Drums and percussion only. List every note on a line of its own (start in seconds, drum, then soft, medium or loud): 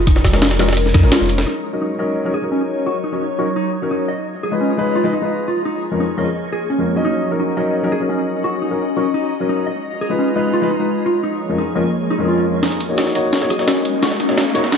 0.07 kick loud
0.07 closed hi-hat medium
0.07 ride medium
0.16 snare medium
0.16 snare soft
0.24 kick medium
0.24 snare loud
0.24 closed hi-hat medium
0.24 ride medium
0.24 shaker medium
0.33 snare loud
0.33 closed hi-hat soft
0.33 ride medium
0.42 snare loud
0.42 closed hi-hat medium
0.42 ride medium
0.42 shaker soft
0.51 snare loud
0.51 ride medium
0.59 snare loud
0.59 snare medium
0.59 open hi-hat medium
0.59 ride medium
0.59 shaker medium
0.68 snare medium
0.68 ride medium
0.68 shaker soft
0.73 snare medium
0.73 ride medium
0.77 closed hi-hat medium
0.77 ride medium
0.86 snare soft
0.94 kick loud
0.94 snare loud
0.94 closed hi-hat medium
0.94 ride medium
0.94 shaker medium
1.03 snare soft
1.03 closed hi-hat soft
1.03 shaker soft
1.12 snare loud
1.12 closed hi-hat loud
1.12 ride medium
1.29 closed hi-hat medium
1.29 ride medium
1.29 shaker medium
1.38 snare loud
1.38 snare soft
1.38 ride medium
12.63 snare soft
12.63 closed hi-hat medium
12.63 ride medium
12.72 ride soft
12.80 closed hi-hat medium
12.80 ride medium
12.98 snare soft
12.98 snare loud
12.98 closed hi-hat medium
12.98 ride medium
13.07 snare soft
13.15 closed hi-hat medium
13.15 ride medium
13.33 snare medium
13.33 closed hi-hat medium
13.33 open hi-hat medium
13.42 snare medium
13.50 closed hi-hat medium
13.50 ride medium
13.59 snare medium
13.59 closed hi-hat soft
13.68 snare medium
13.68 snare loud
13.68 closed hi-hat medium
13.68 ride medium
13.77 closed hi-hat soft
13.85 closed hi-hat medium
13.85 ride medium
14.03 snare medium
14.03 closed hi-hat medium
14.03 ride medium
14.12 snare medium
14.20 closed hi-hat medium
14.20 ride medium
14.29 snare medium
14.37 snare medium
14.37 snare loud
14.37 closed hi-hat medium
14.37 ride medium
14.55 closed hi-hat medium
14.55 ride medium
14.64 snare medium
14.72 snare medium
14.72 closed hi-hat medium
14.72 ride medium